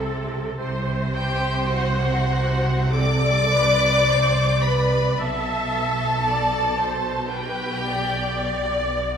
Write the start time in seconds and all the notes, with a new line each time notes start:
Already playing: C2 C3 A4
0.61 C2 C3 C5
1.16 G4 G5
1.72 F#4 F#5
2.93 A4 D5 D6
3.53 B4
4.10 C5
4.64 B4 D5 B5
5.20 B1 B2 A4 E5 A5
6.27 D5
6.80 C5
7.33 G4 B4 G5
7.87 D5